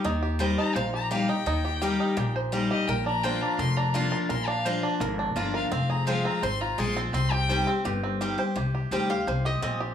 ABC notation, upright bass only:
X:1
M:4/4
L:1/8
Q:1/4=169
K:Cm
V:1 name="Upright bass" clef=bass
E,,4 B,,,4 | E,,4 B,,,4 | B,,,4 F,,,4 | B,,,4 A,,,2 G,,,2 |
F,,,4 A,,,2 B,,,2 | C,,4 G,,,4 | C,,2 D,,2 C,,2 B,,,2 |]